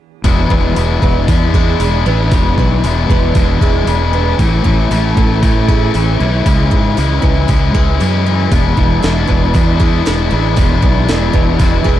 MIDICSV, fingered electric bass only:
0, 0, Header, 1, 2, 480
1, 0, Start_track
1, 0, Tempo, 515907
1, 230, Time_signature, 4, 2, 24, 8
1, 11161, End_track
2, 0, Start_track
2, 0, Title_t, "Fingered electric bass"
2, 0, Program_c, 0, 33
2, 225, Note_on_c, 0, 28, 92
2, 444, Note_off_c, 0, 28, 0
2, 468, Note_on_c, 0, 28, 85
2, 686, Note_off_c, 0, 28, 0
2, 716, Note_on_c, 0, 28, 79
2, 931, Note_off_c, 0, 28, 0
2, 954, Note_on_c, 0, 28, 76
2, 1170, Note_off_c, 0, 28, 0
2, 1192, Note_on_c, 0, 40, 82
2, 1626, Note_off_c, 0, 40, 0
2, 1673, Note_on_c, 0, 28, 74
2, 1891, Note_off_c, 0, 28, 0
2, 1918, Note_on_c, 0, 33, 89
2, 2135, Note_off_c, 0, 33, 0
2, 2161, Note_on_c, 0, 28, 102
2, 2376, Note_off_c, 0, 28, 0
2, 2402, Note_on_c, 0, 35, 89
2, 2618, Note_off_c, 0, 35, 0
2, 2644, Note_on_c, 0, 28, 86
2, 2859, Note_off_c, 0, 28, 0
2, 2883, Note_on_c, 0, 28, 83
2, 3099, Note_off_c, 0, 28, 0
2, 3122, Note_on_c, 0, 28, 86
2, 3338, Note_off_c, 0, 28, 0
2, 3364, Note_on_c, 0, 28, 80
2, 3580, Note_off_c, 0, 28, 0
2, 3596, Note_on_c, 0, 28, 76
2, 4031, Note_off_c, 0, 28, 0
2, 4085, Note_on_c, 0, 33, 106
2, 4301, Note_off_c, 0, 33, 0
2, 4329, Note_on_c, 0, 33, 88
2, 4543, Note_off_c, 0, 33, 0
2, 4570, Note_on_c, 0, 33, 89
2, 4784, Note_off_c, 0, 33, 0
2, 4816, Note_on_c, 0, 33, 81
2, 5028, Note_off_c, 0, 33, 0
2, 5051, Note_on_c, 0, 45, 86
2, 5480, Note_off_c, 0, 45, 0
2, 5536, Note_on_c, 0, 33, 79
2, 5748, Note_off_c, 0, 33, 0
2, 5777, Note_on_c, 0, 35, 90
2, 5988, Note_off_c, 0, 35, 0
2, 6011, Note_on_c, 0, 37, 101
2, 6225, Note_off_c, 0, 37, 0
2, 6250, Note_on_c, 0, 44, 89
2, 6464, Note_off_c, 0, 44, 0
2, 6493, Note_on_c, 0, 37, 82
2, 6705, Note_off_c, 0, 37, 0
2, 6730, Note_on_c, 0, 37, 78
2, 6944, Note_off_c, 0, 37, 0
2, 6973, Note_on_c, 0, 37, 79
2, 7185, Note_off_c, 0, 37, 0
2, 7210, Note_on_c, 0, 37, 71
2, 7424, Note_off_c, 0, 37, 0
2, 7452, Note_on_c, 0, 42, 77
2, 7879, Note_off_c, 0, 42, 0
2, 7925, Note_on_c, 0, 28, 99
2, 8140, Note_off_c, 0, 28, 0
2, 8163, Note_on_c, 0, 28, 87
2, 8378, Note_off_c, 0, 28, 0
2, 8410, Note_on_c, 0, 28, 82
2, 8622, Note_off_c, 0, 28, 0
2, 8644, Note_on_c, 0, 28, 81
2, 8858, Note_off_c, 0, 28, 0
2, 8887, Note_on_c, 0, 40, 85
2, 9313, Note_off_c, 0, 40, 0
2, 9373, Note_on_c, 0, 28, 75
2, 9582, Note_off_c, 0, 28, 0
2, 9605, Note_on_c, 0, 33, 89
2, 9817, Note_off_c, 0, 33, 0
2, 9837, Note_on_c, 0, 28, 100
2, 10052, Note_off_c, 0, 28, 0
2, 10075, Note_on_c, 0, 35, 92
2, 10290, Note_off_c, 0, 35, 0
2, 10322, Note_on_c, 0, 28, 79
2, 10533, Note_off_c, 0, 28, 0
2, 10553, Note_on_c, 0, 28, 85
2, 10768, Note_off_c, 0, 28, 0
2, 10793, Note_on_c, 0, 28, 82
2, 11007, Note_off_c, 0, 28, 0
2, 11028, Note_on_c, 0, 28, 80
2, 11161, Note_off_c, 0, 28, 0
2, 11161, End_track
0, 0, End_of_file